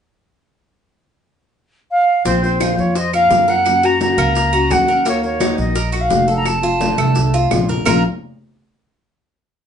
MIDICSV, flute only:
0, 0, Header, 1, 2, 480
1, 0, Start_track
1, 0, Key_signature, -5, "minor"
1, 0, Tempo, 350877
1, 1160, Time_signature, 4, 2, 24, 8
1, 13219, End_track
2, 0, Start_track
2, 0, Title_t, "Flute"
2, 0, Program_c, 0, 73
2, 2613, Note_on_c, 0, 77, 88
2, 3054, Note_off_c, 0, 77, 0
2, 3093, Note_on_c, 0, 72, 88
2, 3311, Note_off_c, 0, 72, 0
2, 3344, Note_on_c, 0, 72, 79
2, 3780, Note_off_c, 0, 72, 0
2, 3812, Note_on_c, 0, 73, 81
2, 4030, Note_off_c, 0, 73, 0
2, 4068, Note_on_c, 0, 75, 84
2, 4279, Note_off_c, 0, 75, 0
2, 4300, Note_on_c, 0, 77, 99
2, 4783, Note_on_c, 0, 78, 95
2, 4804, Note_off_c, 0, 77, 0
2, 5270, Note_on_c, 0, 82, 91
2, 5291, Note_off_c, 0, 78, 0
2, 5489, Note_off_c, 0, 82, 0
2, 5497, Note_on_c, 0, 82, 95
2, 6455, Note_on_c, 0, 78, 94
2, 6475, Note_off_c, 0, 82, 0
2, 6925, Note_off_c, 0, 78, 0
2, 6954, Note_on_c, 0, 73, 85
2, 7159, Note_off_c, 0, 73, 0
2, 7176, Note_on_c, 0, 73, 86
2, 7612, Note_off_c, 0, 73, 0
2, 7662, Note_on_c, 0, 75, 87
2, 8223, Note_on_c, 0, 77, 80
2, 8243, Note_off_c, 0, 75, 0
2, 8688, Note_off_c, 0, 77, 0
2, 8704, Note_on_c, 0, 82, 86
2, 8856, Note_on_c, 0, 81, 85
2, 8877, Note_off_c, 0, 82, 0
2, 10285, Note_off_c, 0, 81, 0
2, 10771, Note_on_c, 0, 82, 80
2, 10987, Note_off_c, 0, 82, 0
2, 13219, End_track
0, 0, End_of_file